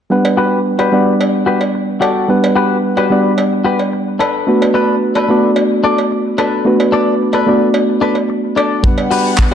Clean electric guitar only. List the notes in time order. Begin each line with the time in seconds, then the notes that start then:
0.37 F#4 G4 B4
0.79 F#4 G4 B4
1.46 F#4 G4 B4
1.74 muted clean electric guitar stroke
2.01 F#4 G4 A4
2.56 F#4 G4 B4
2.97 F#4 G4 B4
3.64 F#4 G4 B4
3.92 muted clean electric guitar stroke
4.19 D4 A4 B4
4.74 D4 A4 B4
5.15 D4 A4 B4
5.84 D4 A4 D5
6.11 muted clean electric guitar stroke
6.38 D4 A4 B4
6.92 D4 A4 D5
7.33 D4 A4 B4
8.01 D4 A4 B4
8.29 muted clean electric guitar stroke
8.56 D4 A4 D5
9.11 F#4 G4 B4